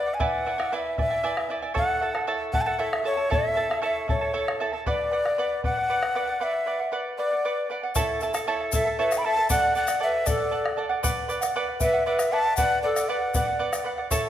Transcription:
Already playing: D5
0.06 D5 F#5
0.14 G#5
0.20 E4 B4 D5 E5 F#5 G#5, bombo low
0.46 E4 D5 E5 G#5, bombo rim
0.58 E4 D5 G#5, bombo rim
0.72 E4 B4 D5 E5 G#5
0.98 E4 D5 E5 G#5, bombo low
1.10 E4 D5 G#5
1.23 E4 B4 D5 E5 G#5, bombo rim
1.37 bombo rim
1.50 E4 D5 E5 G#5, bombo rim
1.62 E4 D5 G#5
1.74 E4 A4 C#5 E5 F#5 A5, bombo low
1.90 bombo rim
2.01 E4 A4 E5 A5
2.15 E4 A4 A5, bombo rim
2.27 E4 A4 C#5 E5 A5
2.53 E4 A4 E5 F#5 A5, bombo low
2.61 A5
2.66 E4 A4 F#5 A5
2.78 E4 A4 C#5 E5 A5
2.93 bombo rim
3.04 E4 A4 C#5 E5 A5, bombo rim
3.17 E4 A4 A5
3.30 E4 A4 C#5 E5 A5, bombo low
3.55 E4 A4 E5 A5
3.69 E4 A4 A5, bombo rim
3.82 E4 A4 C#5 E5 A5
4.08 E4 A4 C#5 E5 A5, bombo low
4.21 E4 A4 A5
4.33 E4 A4 C#5 E5 A5
4.48 bombo rim
4.60 E4 A4 E5 A5, bombo rim
4.73 E4 A4 A5
4.86 B4 D5 F#5, bombo low
4.99 bombo rim
5.11 B4 D5 F#5
5.25 D5 F#5, bombo rim
5.38 B4 D5 F#5
5.64 B4 D5 F#5, bombo low
5.77 D5 F#5
5.89 B4 D5 F#5
6.03 bombo rim
6.15 B4 D5 F#5, bombo rim
6.28 D5 F#5
6.40 B4 D5 E5 F#5
6.66 B4 D5 F#5
6.79 D5 F#5
6.92 B4 D5 F#5
7.18 B4 D5 F#5
7.31 D5 F#5
7.45 B4 D5 F#5
7.70 B4 D5 F#5
7.83 D5 F#5
7.95 E4 A4 C#5 E5 A5, bombo low, shaker
8.20 E4 A4 E5 A5, shaker
8.34 E4 A4 A5, bombo rim, shaker
8.47 E4 A4 C#5 E5 A5
8.61 bombo rim
8.72 E4 A4 E5 A5, bombo low, shaker
8.85 E4 A4 A5
8.99 E4 A4 B4 C#5 E5 A5
9.11 bombo rim, shaker
9.17 G5 B5
9.25 E4 A4 E5 A5
9.37 E4 A4 A5
9.50 A4 D5 F#5, bombo low, shaker
9.75 A4 D5 F#5, shaker
9.87 D5 F#5, bombo rim, shaker
10.00 A4 B4 D5 E5 F#5
10.26 A4 D5 F#5, bombo low, shaker
10.38 D5 F#5
10.51 A4 D5 F#5
10.66 bombo rim
10.77 A4 D5 F#5
10.89 D5 F#5
11.03 B4 D5 F#5, bombo low, shaker
11.28 B4 D5 F#5, shaker
11.41 D5 F#5, bombo rim, shaker
11.56 B4 D5 F#5
11.68 bombo rim
11.80 B4 D5 E5 F#5, bombo low, shaker
11.93 D5 F#5
12.06 B4 D5 E5 F#5
12.19 bombo rim, shaker
12.31 B4 D5 E5 F#5 A5
12.45 D5 F#5
12.57 B4 D5 F#5, bombo low, shaker
12.83 A4 B4 D5 F#5
12.96 D5 F#5, bombo rim, shaker
13.09 B4 D5 F#5
13.22 bombo rim
13.34 B4 D5 F#5, bombo rim, bombo low, shaker
13.46 D5 F#5
13.59 B4 D5 F#5
13.73 bombo rim, shaker
13.84 B4 D5 F#5
13.98 D5 F#5, bombo rim
14.11 E4 A4 C#5 E5 A5, bombo low, shaker

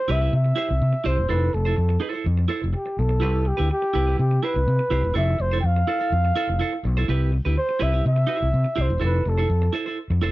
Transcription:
Already playing: C5
0.08 C2 E4 G4 B4 E5
0.20 E4 G4 B4
0.33 C3 E5
0.44 muted clean electric guitar stroke
0.56 E4 G4 C5
0.69 C2, muted clean electric guitar stroke
0.81 C3
0.93 muted clean electric guitar stroke
1.04 C2 E4 G4 C5
1.18 E1, muted clean electric guitar stroke
1.29 F1 E4 A4 B4 C5
1.53 F1 A4, muted clean electric guitar stroke
1.65 E4 A4 C5
1.76 F2, muted clean electric guitar stroke
1.89 muted clean electric guitar stroke
2.00 E4 A4 C5
2.13 E4 A4 C5
2.26 F2
2.37 muted clean electric guitar stroke
2.48 E4 A4 C5
2.62 F1, muted clean electric guitar stroke
2.73 G4, muted clean electric guitar stroke
2.86 muted clean electric guitar stroke
2.99 B1 A4
3.09 muted clean electric guitar stroke
3.20 C2 E4 G4 B4
3.45 G4, muted clean electric guitar stroke
3.57 D2 E4 G4 B4
3.70 G4, muted clean electric guitar stroke
3.82 muted clean electric guitar stroke
3.94 C2 E4 G4 B4
4.07 E4 G4 B4
4.19 C3 G4
4.31 muted clean electric guitar stroke
4.43 E4 G4 B4 C5
4.56 C2, muted clean electric guitar stroke
4.68 C3
4.79 muted clean electric guitar stroke
4.90 C2 E4 G4 C5
5.03 E1, muted clean electric guitar stroke
5.14 F1 E4 A4 C5 E5
5.39 F1 C5, muted clean electric guitar stroke
5.51 E4 A4 C5
5.61 F2 G5, muted clean electric guitar stroke
5.66 F5
5.76 muted clean electric guitar stroke
5.87 E4 A4 C5
5.99 E4 A4 C5
6.12 F2
6.25 muted clean electric guitar stroke
6.36 E4 A4 C5
6.49 F1, muted clean electric guitar stroke
6.59 E4 A4 C5
6.73 muted clean electric guitar stroke
6.84 B1, muted clean electric guitar stroke
6.97 E4 A4 C5
7.08 C2 E4 G4 B4
7.32 muted clean electric guitar stroke
7.45 D2 E4 G4 B4
7.56 C5, muted clean electric guitar stroke
7.69 muted clean electric guitar stroke
7.79 C2 E4 G4 B4 E5
7.92 E4 G4 B4
8.06 C3 E5
8.16 muted clean electric guitar stroke
8.27 E4 G4 C5
8.41 C2, muted clean electric guitar stroke
8.54 C3
8.65 muted clean electric guitar stroke
8.76 C2 E4 G4 C5
8.81 C5
8.88 E1, muted clean electric guitar stroke
9.00 F1 E4 A4 C5
9.05 B4
9.24 F1, muted clean electric guitar stroke
9.29 A4
9.38 E4 A4 C5
9.49 F2, muted clean electric guitar stroke
9.62 muted clean electric guitar stroke
9.73 E4 A4 C5
9.86 E4 A4 C5
10.10 F2, muted clean electric guitar stroke
10.22 F1 E4 A4 C5

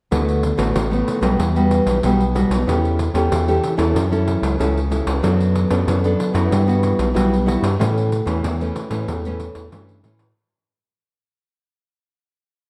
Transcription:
0.11 D2 D3 A3 B3 F#4, pandeiro
0.28 pandeiro
0.43 pandeiro
0.57 A1 A3 B3 F#4, pandeiro
0.75 A1 A2, pandeiro
0.91 A3 B3 F#4, pandeiro
1.08 pandeiro
1.21 B1 G3 B3 F#4, pandeiro
1.39 E2 E3, pandeiro
1.56 G3 B3 F#4, pandeiro
1.71 pandeiro
1.86 B1, pandeiro
2.03 B1 B2 G3 B3 F#4, pandeiro
2.21 pandeiro
2.35 G3 B3 F#4, pandeiro
2.50 B1, pandeiro
2.67 E2 E3 C#4 G4 A4, pandeiro
2.85 pandeiro
2.99 pandeiro
3.14 E2 C#4 G4 A4, pandeiro
3.32 E2 E3, pandeiro
3.48 C#4 G4 A4, pandeiro
3.64 pandeiro
3.77 E2 C#4 E4 A4, pandeiro
3.94 F#2 F#3, pandeiro
4.12 C#4 E4 A4, pandeiro
4.28 pandeiro
4.42 C#2, pandeiro
4.59 C#2 C#3 C#4 E4 A4, pandeiro
4.77 pandeiro
4.90 C#4 E4 A4, pandeiro
5.06 C#2, pandeiro
5.22 F#2 F#3 B3 D4 A4, pandeiro
5.40 pandeiro
5.55 pandeiro
5.70 F#2 B3 D4 A4, pandeiro
5.87 F#2 F#3, pandeiro
6.04 B3 D4 A4, pandeiro
6.20 pandeiro
6.34 F#2 B3 E4 F#4, pandeiro
6.51 G2 G3, pandeiro
6.67 B3 E4 F#4, pandeiro
6.83 pandeiro
6.99 B1, pandeiro
7.14 B1 G3 B3 E4 F#4, pandeiro
7.34 pandeiro
7.46 B3 E4 F#4, pandeiro
7.62 G2, pandeiro
7.79 A2 E3 A3 C#4, pandeiro
7.98 pandeiro
8.12 pandeiro
8.26 E2 E3 A3 C#4, pandeiro
8.43 E2 E3, pandeiro
8.60 E3 A3 C#4, pandeiro
8.76 pandeiro
8.90 A2 E3 A3 C#4, pandeiro
9.08 E2 A2, pandeiro
9.25 E3 A3 C#4, pandeiro
9.40 pandeiro
9.55 E2, pandeiro
9.71 G2 E3 A3 C#4, pandeiro
9.89 pandeiro
10.03 A2 E3 A3 C#4, pandeiro
10.19 pandeiro

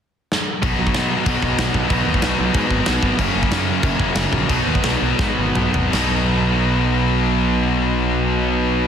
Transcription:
0.32 snare
0.62 B1 B2 F#3 D#4, kick, crash
0.66 B3
0.79 B1
0.87 kick
0.94 B2, snare, crash
1.26 B1 B2 F#3 B3, kick, crash
1.42 B1, kick
1.58 B1, snare, crash
1.74 B1, kick
1.89 B1 B2 F#3 B3 D#4, kick, crash
2.07 D#2
2.14 kick
2.22 B1, snare, crash
2.39 B1
2.53 G#2 B2 F#3, kick, crash
2.58 B3
2.71 G#1, kick
2.86 B1, snare, crash
3.03 G#1, kick
3.17 F#1 F#2 C#3 A#3 C#4, kick, crash
3.22 F#3
3.35 F#1
3.43 kick
3.51 F#2, snare, crash
3.83 F#1 F#2 C#3 F#3, kick, crash
3.99 F#1, kick
4.15 F#1, snare, crash
4.33 A#1, kick
4.48 B1 B2 F#3 D#4, kick, crash
4.53 B3
4.67 D#2
4.75 kick
4.83 B1, snare, crash
5.02 B1
5.19 G#2 B2 F#3 B3, kick, snare
5.38 G#1
5.55 B1, mid tom
5.74 G#1, floor tom
5.92 B1 B2 F#3 B3 D#4, snare, crash

